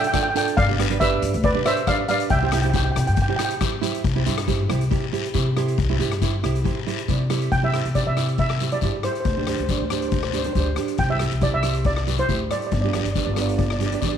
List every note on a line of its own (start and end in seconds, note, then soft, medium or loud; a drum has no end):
0.04 0.13 G5 medium
0.04 closed hi-hat medium
0.13 0.27 D4 medium
0.13 0.27 F4 medium
0.13 0.27 A4 medium
0.13 0.22 G5 medium
0.13 kick medium
0.13 cross-stick medium
0.13 closed hi-hat medium
0.13 short guiro medium
0.23 0.29 G5 medium
0.30 0.36 G5 medium
0.35 0.55 D4 medium
0.35 0.55 F4 medium
0.35 0.55 A4 medium
0.35 0.43 G5 medium
0.35 closed hi-hat medium
0.35 short guiro medium
0.44 0.52 G5 medium
0.44 closed hi-hat medium
0.57 1.15 G1 loud
0.57 0.98 D5 medium
0.57 0.97 F5 loud
0.57 kick loud
0.57 closed hi-hat medium
0.57 long guiro medium
0.68 0.75 D4 medium
0.68 0.75 G4 medium
0.68 0.75 B4 medium
0.79 0.86 D4 medium
0.79 0.86 G4 medium
0.79 0.86 B4 medium
0.79 cross-stick medium
0.79 closed hi-hat medium
0.90 0.96 D4 medium
0.90 0.97 G4 medium
0.90 0.97 B4 medium
0.90 closed hi-hat medium
1.00 1.34 D4 medium
1.00 1.34 G4 medium
1.00 1.42 B4 medium
1.00 1.34 D5 medium
1.00 1.45 E5 loud
1.00 kick medium
1.00 closed hi-hat medium
1.00 short guiro medium
1.22 1.32 G2 medium
1.22 closed hi-hat medium
1.34 1.53 D2 loud
1.34 closed hi-hat medium
1.43 1.65 B4 medium
1.43 1.67 D5 loud
1.43 kick loud
1.43 closed hi-hat medium
1.43 long guiro medium
1.55 1.61 D4 medium
1.55 1.61 G4 medium
1.55 1.62 B4 medium
1.65 1.79 D4 medium
1.65 1.79 G4 medium
1.65 1.79 B4 medium
1.65 1.87 C5 medium
1.65 1.88 E5 medium
1.65 cross-stick medium
1.65 closed hi-hat medium
1.65 short guiro medium
1.77 closed hi-hat medium
1.87 2.01 D4 medium
1.87 2.01 G4 medium
1.87 2.01 B4 medium
1.87 2.08 D5 medium
1.87 2.07 F5 medium
1.87 kick medium
1.87 cross-stick medium
1.87 closed hi-hat medium
1.87 short guiro medium
2.08 2.29 D4 medium
2.08 2.29 G4 medium
2.08 2.29 B4 medium
2.08 2.30 D5 medium
2.08 2.31 F5 medium
2.08 closed hi-hat medium
2.08 short guiro medium
2.20 closed hi-hat medium
2.30 2.88 C2 loud
2.30 2.38 E5 medium
2.30 2.38 G5 medium
2.30 kick loud
2.30 closed hi-hat medium
2.30 long guiro medium
2.39 2.48 E4 medium
2.39 2.49 G4 medium
2.39 2.45 G5 medium
2.43 2.49 C5 medium
2.43 2.52 G5 medium
2.52 2.59 E4 medium
2.52 2.60 G4 medium
2.52 2.60 C5 medium
2.52 2.61 G5 medium
2.52 cross-stick medium
2.52 closed hi-hat medium
2.62 2.70 E4 medium
2.62 2.70 G4 medium
2.62 2.71 C5 medium
2.62 2.68 G5 medium
2.62 closed hi-hat medium
2.70 3.07 E4 medium
2.70 3.07 G4 medium
2.70 2.75 G5 medium
2.70 kick medium
2.70 closed hi-hat medium
2.74 3.08 C5 medium
2.74 2.83 G5 medium
2.74 short guiro medium
2.84 2.90 G5 medium
2.92 2.98 G5 medium
2.96 3.06 C3 medium
2.96 3.06 G5 medium
2.96 cross-stick medium
2.96 closed hi-hat medium
3.07 3.27 G2 medium
3.07 3.14 G5 medium
3.07 closed hi-hat medium
3.15 3.21 G5 medium
3.15 kick loud
3.15 closed hi-hat medium
3.15 long guiro medium
3.22 3.29 G5 medium
3.28 3.35 E4 medium
3.28 3.35 G4 medium
3.28 3.35 C5 medium
3.28 3.35 G5 medium
3.36 3.53 E4 medium
3.36 3.53 G4 medium
3.36 3.53 C5 medium
3.36 3.43 G5 medium
3.36 cross-stick medium
3.36 closed hi-hat medium
3.36 short guiro medium
3.45 3.51 G5 medium
3.50 closed hi-hat medium
3.61 3.74 E4 medium
3.61 3.74 G4 medium
3.61 3.75 C5 medium
3.61 kick medium
3.61 cross-stick medium
3.61 closed hi-hat medium
3.61 short guiro medium
3.81 4.02 E4 medium
3.81 4.02 G4 medium
3.81 4.02 C5 loud
3.81 closed hi-hat loud
3.81 short guiro medium
3.94 closed hi-hat medium
4.04 4.24 C2 medium
4.04 kick loud
4.04 closed hi-hat medium
4.04 long guiro medium
4.16 4.22 E4 medium
4.16 4.22 G4 medium
4.16 4.23 C5 medium
4.26 4.65 G2 medium
4.26 4.40 E4 medium
4.26 4.40 G4 medium
4.26 4.40 C5 medium
4.26 closed hi-hat medium
4.26 short guiro medium
4.38 cross-stick medium
4.38 closed hi-hat medium
4.47 4.61 E4 medium
4.47 4.61 G4 medium
4.47 4.61 C5 medium
4.47 kick medium
4.47 closed hi-hat medium
4.47 short guiro medium
4.69 4.89 C2 medium
4.69 4.83 E4 medium
4.69 4.83 G4 medium
4.69 4.83 C5 medium
4.69 cross-stick medium
4.69 closed hi-hat medium
4.81 closed hi-hat medium
4.91 5.05 E4 medium
4.91 5.05 G4 medium
4.91 5.05 C5 medium
4.91 kick loud
4.91 closed hi-hat medium
4.91 long guiro medium
5.12 5.26 E4 medium
5.12 5.26 G4 medium
5.12 5.26 C5 medium
5.12 closed hi-hat medium
5.25 closed hi-hat medium
5.34 5.73 C3 medium
5.34 5.48 E4 medium
5.34 5.48 G4 medium
5.34 5.48 C5 medium
5.34 kick medium
5.34 closed hi-hat medium
5.34 short guiro medium
5.56 5.76 E4 medium
5.56 5.76 G4 medium
5.56 5.77 C5 medium
5.56 cross-stick medium
5.56 closed hi-hat medium
5.68 closed hi-hat medium
5.78 5.97 C2 medium
5.78 kick loud
5.78 closed hi-hat medium
5.78 long guiro medium
5.90 5.96 E4 medium
5.90 5.96 G4 medium
5.90 5.96 C5 medium
5.99 6.38 G2 medium
5.99 6.13 E4 medium
5.99 6.13 G4 medium
5.99 6.14 C5 medium
5.99 closed hi-hat medium
5.99 short guiro medium
6.12 cross-stick medium
6.12 closed hi-hat medium
6.22 6.35 E4 medium
6.22 6.36 G4 medium
6.22 6.36 C5 medium
6.22 kick medium
6.22 closed hi-hat medium
6.22 short guiro medium
6.43 6.63 C2 medium
6.43 6.57 E4 medium
6.43 6.57 G4 medium
6.43 6.58 C5 medium
6.43 cross-stick medium
6.43 closed hi-hat medium
6.56 closed hi-hat medium
6.64 6.78 E4 medium
6.64 6.78 G4 medium
6.64 6.79 C5 medium
6.64 kick loud
6.64 closed hi-hat medium
6.64 long guiro medium
6.87 7.00 E4 medium
6.87 7.01 G4 medium
6.87 7.07 C5 medium
6.87 closed hi-hat medium
6.98 closed hi-hat medium
7.08 7.47 C3 medium
7.08 7.22 E4 medium
7.08 7.22 G4 medium
7.08 7.22 C5 medium
7.08 7.29 D5 medium
7.08 kick medium
7.08 closed hi-hat medium
7.08 short guiro medium
7.30 7.50 E4 medium
7.30 7.50 G4 medium
7.30 7.50 C5 medium
7.30 7.51 E5 medium
7.30 cross-stick medium
7.30 closed hi-hat medium
7.30 short guiro medium
7.41 closed hi-hat medium
7.52 7.81 C3 medium
7.52 7.64 G5 loud
7.52 kick loud
7.52 closed hi-hat medium
7.52 long guiro medium
7.63 7.69 E4 medium
7.63 7.69 G4 medium
7.63 7.70 C5 medium
7.63 7.97 E5 medium
7.73 7.87 E4 medium
7.73 7.87 G4 medium
7.73 7.88 C5 medium
7.73 cross-stick medium
7.73 closed hi-hat medium
7.85 8.04 C3 medium
7.85 closed hi-hat medium
7.95 8.09 E4 medium
7.95 8.09 G4 medium
7.95 8.10 C5 medium
7.95 8.07 D5 medium
7.95 kick medium
7.95 closed hi-hat medium
7.95 short guiro medium
8.07 8.73 C3 medium
8.07 8.38 E5 medium
8.17 8.43 E4 medium
8.17 8.43 G4 medium
8.17 8.44 C5 medium
8.17 cross-stick medium
8.17 closed hi-hat medium
8.17 short guiro medium
8.28 closed hi-hat soft
8.38 8.70 E5 medium
8.38 kick loud
8.38 closed hi-hat medium
8.38 long guiro medium
8.50 cross-stick medium
8.60 8.68 E4 medium
8.60 8.68 G4 medium
8.60 8.68 C5 medium
8.60 closed hi-hat medium
8.60 short guiro medium
8.72 8.78 E4 medium
8.72 8.79 G4 medium
8.72 8.79 C5 medium
8.72 9.05 D5 medium
8.72 closed hi-hat medium
8.81 9.01 G2 medium
8.81 8.96 E4 medium
8.81 8.96 G4 medium
8.81 8.96 C5 medium
8.81 kick medium
8.81 closed hi-hat medium
8.81 short guiro medium
9.03 9.24 E4 medium
9.03 9.24 G4 medium
9.03 9.11 C5 medium
9.03 9.24 C5 medium
9.03 cross-stick medium
9.03 closed hi-hat medium
9.12 9.19 C5 medium
9.12 closed hi-hat medium
9.20 9.26 C5 medium
9.25 9.55 D2 loud
9.25 9.33 C5 medium
9.25 kick loud
9.25 closed hi-hat medium
9.25 long guiro medium
9.34 9.43 D4 medium
9.34 9.43 G4 medium
9.34 9.40 C5 medium
9.34 9.44 C5 medium
9.42 9.47 C5 soft
9.47 9.61 D4 medium
9.47 9.61 G4 medium
9.47 9.61 C5 medium
9.47 9.55 C5 soft
9.47 cross-stick medium
9.47 closed hi-hat medium
9.56 9.78 D2 medium
9.56 9.62 C5 soft
9.56 closed hi-hat medium
9.63 9.69 C5 soft
9.69 9.83 D4 medium
9.69 9.83 G4 medium
9.69 9.77 C5 soft
9.69 9.83 C5 medium
9.69 kick medium
9.69 closed hi-hat medium
9.69 short guiro medium
9.78 10.47 D2 medium
9.78 9.84 C5 soft
9.85 9.91 C5 soft
9.90 10.17 D4 medium
9.90 10.17 G4 medium
9.90 10.17 C5 medium
9.90 10.00 C5 soft
9.90 cross-stick medium
9.90 closed hi-hat medium
9.90 short guiro medium
10.01 10.07 C5 soft
10.01 closed hi-hat medium
10.08 10.14 C5 medium
10.08 kick loud
10.08 closed hi-hat medium
10.08 long guiro medium
10.16 10.23 C5 soft
10.23 10.29 C5 soft
10.23 cross-stick medium
10.30 10.40 D4 medium
10.30 10.41 G4 medium
10.30 10.37 C5 soft
10.30 closed hi-hat medium
10.30 short guiro medium
10.34 10.41 C5 medium
10.39 10.45 C5 medium
10.44 10.51 D4 medium
10.44 10.52 G4 medium
10.44 10.52 C5 medium
10.44 closed hi-hat medium
10.53 10.75 D2 medium
10.53 10.69 D4 medium
10.53 10.69 G4 medium
10.53 10.59 C5 medium
10.53 10.69 C5 medium
10.53 kick medium
10.53 closed hi-hat medium
10.53 short guiro medium
10.60 10.68 C5 medium
10.76 10.97 D4 medium
10.76 10.97 G4 medium
10.76 10.97 C5 medium
10.76 cross-stick medium
10.76 closed hi-hat medium
10.88 closed hi-hat medium
10.98 11.28 C2 medium
10.98 11.11 G5 loud
10.98 kick loud
10.98 closed hi-hat medium
10.98 long guiro medium
11.09 11.16 E4 medium
11.09 11.16 G4 medium
11.09 11.16 C5 medium
11.09 11.43 E5 medium
11.19 11.34 E4 medium
11.19 11.34 G4 medium
11.19 11.34 C5 medium
11.19 cross-stick medium
11.19 closed hi-hat medium
11.31 11.51 C2 medium
11.31 closed hi-hat medium
11.41 11.55 E4 medium
11.41 11.56 G4 medium
11.41 11.56 C5 medium
11.41 11.53 D5 medium
11.41 kick medium
11.41 closed hi-hat medium
11.41 short guiro medium
11.53 12.20 C2 medium
11.53 11.87 E5 medium
11.63 11.90 E4 medium
11.63 11.90 G4 medium
11.63 11.90 C5 medium
11.63 cross-stick medium
11.63 closed hi-hat medium
11.63 short guiro medium
11.75 closed hi-hat medium
11.84 12.20 D5 medium
11.84 kick loud
11.84 closed hi-hat medium
11.84 long guiro medium
11.96 cross-stick medium
12.07 12.14 E4 medium
12.07 12.14 G4 medium
12.07 12.14 B4 medium
12.07 closed hi-hat medium
12.07 short guiro medium
12.18 12.25 E4 medium
12.18 12.25 G4 medium
12.18 12.25 C5 medium
12.18 12.52 C5 medium
12.18 closed hi-hat medium
12.29 12.48 D2 medium
12.29 12.42 E4 medium
12.29 12.43 G4 medium
12.29 12.43 C5 medium
12.29 kick medium
12.29 closed hi-hat medium
12.29 short guiro medium
12.51 12.70 E4 medium
12.51 12.70 G4 medium
12.51 12.71 C5 medium
12.51 12.58 D5 medium
12.51 cross-stick medium
12.51 closed hi-hat medium
12.62 closed hi-hat medium
12.67 12.72 D5 medium
12.71 13.01 G1 loud
12.71 12.80 D5 medium
12.71 kick loud
12.71 closed hi-hat medium
12.71 long guiro medium
12.82 12.90 D4 medium
12.82 12.90 G4 medium
12.82 12.90 B4 medium
12.82 12.87 D5 medium
12.93 13.07 D4 medium
12.93 13.08 G4 medium
12.93 13.08 B4 medium
12.93 13.03 D5 medium
12.93 cross-stick medium
12.93 closed hi-hat medium
13.04 13.24 G1 medium
13.04 13.10 D5 soft
13.04 closed hi-hat medium
13.12 13.29 D4 medium
13.12 13.29 G4 medium
13.12 13.29 B4 medium
13.12 13.17 D5 soft
13.12 kick medium
13.12 closed hi-hat medium
13.12 short guiro medium
13.18 13.24 D5 soft
13.25 13.93 G1 medium
13.25 13.32 D5 medium
13.34 13.63 D4 medium
13.34 13.63 G4 medium
13.34 13.63 B4 medium
13.34 13.40 D5 soft
13.34 cross-stick medium
13.34 closed hi-hat medium
13.34 short guiro medium
13.41 13.48 D5 medium
13.49 13.56 D5 soft
13.49 closed hi-hat medium
13.58 13.64 D5 medium
13.58 kick loud
13.58 closed hi-hat medium
13.58 long guiro medium
13.66 13.71 D5 soft
13.70 13.78 D5 medium
13.70 cross-stick medium
13.79 13.87 D4 medium
13.79 13.87 G4 medium
13.79 13.88 B4 medium
13.79 13.85 D5 soft
13.79 closed hi-hat medium
13.87 13.93 D5 medium
13.92 13.98 D4 medium
13.92 13.99 G4 medium
13.92 13.99 B4 medium
13.92 14.00 D5 medium
13.92 closed hi-hat medium
14.01 14.18 E2 medium
14.01 14.16 D4 medium
14.01 14.16 G4 medium
14.01 14.16 B4 medium
14.01 14.08 D5 medium
14.01 kick medium
14.01 closed hi-hat medium
14.01 short guiro medium
14.09 14.16 D5 medium